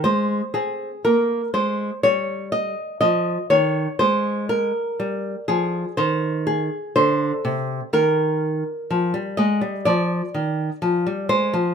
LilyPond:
\new Staff \with { instrumentName = "Nylon-string guitar" } { \clef bass \time 4/4 \key aes \lydian \tempo 4 = 61 << { c''8 aes'8 bes'8 c''8 des''8 ees''8 ees''8 des''8 | c''8 bes'4 aes'8 c''8 aes'8 c''4 | \key ees \major bes'4. ees''8 d''4. c''8 | } \\ { aes8 c'8 bes8 aes8 g4 f8 ees8 | aes4 g8 f8 ees4 d8 c8 | ees4 f16 g16 aes16 g16 f8 ees8 f16 g16 aes16 f16 | } >> }